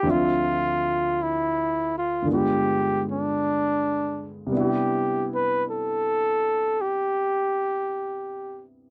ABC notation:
X:1
M:4/4
L:1/16
Q:"Swing" 1/4=54
K:Clyd
V:1 name="Trumpet"
=F4 E2 F2 G2 D4- D z | G2 B2 A4 G6 z2 |]
V:2 name="Grand piano" clef=bass
[D,,D,=F,Ce]8 [G,,D,_A,B,=F]8 | [C,G,B,DE]16 |]